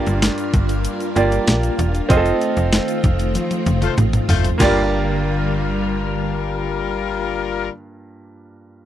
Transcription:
Already playing: G2 G3 A#3 D4 F4 G4 D5
0.07 G1, closed hi-hat, shaker
0.22 snare, closed hi-hat, tambourine, shaker
0.38 closed hi-hat, shaker
0.54 G1, kick, closed hi-hat, shaker
0.69 closed hi-hat, shaker
0.85 closed hi-hat, shaker
1.00 closed hi-hat, shaker
1.16 G1 A#3 F4 G4 D5, closed hi-hat, shaker
1.32 closed hi-hat, shaker
1.47 A#1, snare, closed hi-hat, tambourine, shaker
1.63 closed hi-hat, shaker
1.79 E1, closed hi-hat, shaker
1.95 closed hi-hat, shaker
2.09 F1 D#3 A3 C4 F4 G#4 D#5, kick, closed hi-hat, shaker
2.17 A4
2.26 closed hi-hat, shaker
2.41 closed hi-hat, shaker
2.57 F1, closed hi-hat, shaker
2.73 snare, closed hi-hat, tambourine, shaker
2.88 closed hi-hat, shaker
3.03 F1, kick, closed hi-hat, shaker
3.19 closed hi-hat, shaker
3.35 closed hi-hat, high tom, shaker
3.51 closed hi-hat, high tom, shaker
3.66 F1, closed hi-hat, mid tom, shaker
3.82 A3 F4 C5, closed hi-hat, mid tom, shaker
3.98 A1, closed hi-hat, mid tom, shaker
4.13 closed hi-hat, mid tom, shaker
4.29 F#1 A3 F4 C5, floor tom, open hi-hat, shaker
4.44 closed hi-hat, floor tom, shaker
4.58 G1 G2 D3 G3 A#3 F4 G4 A#4, kick, snare, crash, shaker
4.63 D5

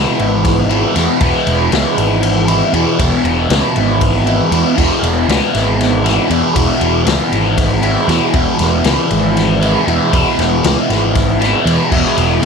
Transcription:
Already playing: E2 B2 E3 G#3 B3 E4
0.19 G#1, ride
0.45 kick, snare, ride
0.69 E3 G#3 B3 E4, ride
0.94 E2 B2 E3 G#3 B3 E4, snare, ride
1.20 E1 E2 B2 E3 G#3 B3 E4, kick, ride
1.47 E1, ride
1.72 C#2 E3 G#3 B3 E4, snare, ride
1.98 G#1, ride
2.23 ride
2.48 E3 G#3 B3 E4, ride
2.73 E2 B2 E3 G#3 B3 E4, ride
2.99 E1 E2 B2 E3 G#3 B3 E4, kick, ride
3.25 E1, ride
3.49 C#2 E3 G#3 B3 E4, snare, ride
3.76 G#1, ride
4.01 kick, ride
4.26 E3 G#3 B3 E4, ride
4.51 E2 B2 E3 G#3 B3 E4, ride
4.76 E1 E2 B2 E3 G#3 B3 E4, kick, crash
5.03 E1, ride
5.28 C#2 E3 G#3 B3 E4, snare, ride
5.55 G#1, snare, ride
5.81 snare, ride
6.04 E3 G#3 B3 E4, snare, ride
6.28 E2 B2 E3 G#3 B3 E4, ride
6.54 E1 E2 B2 E3 G#3 B3 E4, kick, ride
6.81 E1, ride
7.05 C#2 E3 G#3 B3 E4, snare, ride
7.32 G#1, ride
7.58 kick, snare, ride
7.82 E3 G#3 B3 E4, ride
8.08 E2 B2 E3 G#3 B3 E4, snare, ride
8.34 E1 E2 B2 E3 G#3 B3 E4, kick, ride
8.59 E1, snare, ride
8.84 C#2 E3 G#3 B3 E4, snare, ride
9.11 G#1, ride
9.37 snare, ride
9.62 E3 G#3 B3 E4, ride
9.86 E2 B2 E3 G#3 B3 E4, ride
10.12 E1 E2 B2 E3 G#3 B3 E4, kick, ride
10.39 E1, snare, ride
10.63 C#2 E3 G#3 B3 E4, snare, ride
10.90 G#1, snare, ride
11.15 kick, snare, ride
11.40 E3 G#3 B3 E4, snare, ride
11.64 E2 B2 E3 G#3 B3 E4, ride
11.90 E1 E2 B2 E3 G#3 B3 E4, kick, crash
12.18 E1, ride
12.40 E3 G#3 B3

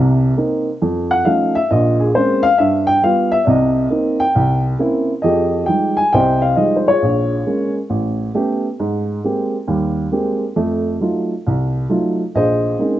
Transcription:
Already playing: C2 C3
0.37 A#3 C4 D#4
0.82 F2
1.11 F#5
1.25 F3 A3 C#4 D#4 F5
1.55 E5
1.71 A#1 A#2 D#5
2.00 G#4
2.15 G#3 A#3 C4 C#4 C5
2.43 F5
2.58 G2 E5
2.87 G5
3.02 G3 B3 F4 F5
3.32 E5
3.45 C2 C3 D5
3.49 D#5
3.90 A#3 C4 D#4
4.20 G5
4.35 C2
4.79 A#3 C4 C#4 E4
5.22 F2 F3 G4 G#4 D#5
5.66 F3 G3 G#3 D#4 G5
5.97 G#5
6.13 C2 C3 C5 D#5 G5
6.42 F5
6.56 F3 G3 G#3 D#4 D#5
6.76 C5
6.88 F4 G#4 C#5
7.02 A#1
7.46 G#3 A#3 C#4
7.90 A1
8.34 A3 B3 C#4 G4
8.80 G#2
9.24 G#3 A#3 C4 G4
9.67 D#2 G3
10.12 G#3 A#3 C4 G4
10.56 F2 A3
11.01 F#3 A3 D#4 F4
11.47 C2
11.89 F#3 A3 D#4 F4
12.35 A#1 G#4 C5 D#5
12.79 G#3 A#3 C4 C#4 D#4

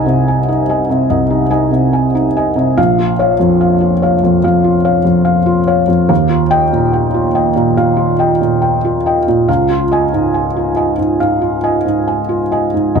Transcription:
Already playing: C2 D#4 D#5 G#5
0.06 C3
0.28 G#5
0.48 D#4
0.69 D#5 G#5
0.89 C3
1.10 C2 D#5
1.30 D#4
1.50 D#4 D#5 G#5
1.71 C3
1.93 G#5
2.15 D#4
2.36 D#5 G#5
2.56 C3
2.77 A#1 F5
2.98 F4
3.19 C#5 F5
3.40 F2
3.61 F5
3.81 F4
4.02 C#5 F5
4.24 F2
4.44 F2 F5
4.64 F4
4.85 C#5 F5
5.05 F2
5.25 F5
5.46 F4
5.67 C#5 F5
5.88 F2
6.09 D#2 F5
6.29 F4
6.51 D#5 G5
6.72 A#2
6.93 G5
7.14 F4
7.35 D#5 G5
7.56 A#2
7.77 A#2 F5
7.97 F4
8.19 D#5 G5
8.41 A#2
8.62 G5
8.85 F4
9.06 D#5 G5
9.28 A#2
9.48 C#2 F5
9.70 F4
9.91 D#5 G#5
10.13 G#2
10.34 G#5
10.57 F4
10.76 D#5 G#5
10.98 G#2
11.20 G#2 F5
11.42 F4
11.64 D#5 G#5
11.86 G#2
12.08 G#5
12.29 F4
12.52 D#5 G#5
12.74 G#2
12.95 C2 D#5

